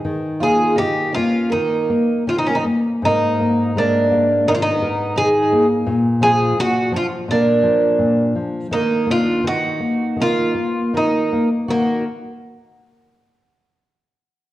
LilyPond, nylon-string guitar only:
\new Staff \with { instrumentName = "Nylon-string guitar" } { \clef bass \time 4/4 \key ees \minor \tempo 4 = 82 ees8 bes8 ees8 bes8 ees8 bes8 ees8 bes8 | aes,8 bes8 aes8 bes8 ees8 bes'8 ees8 bes8 | bes,8 f8 bes,8 f8 bes,8 f8 bes,8 f8 | ees8 bes8 ees8 bes8 ees8 bes8 ees8 bes8 |
<ees bes>8 r2. r8 | }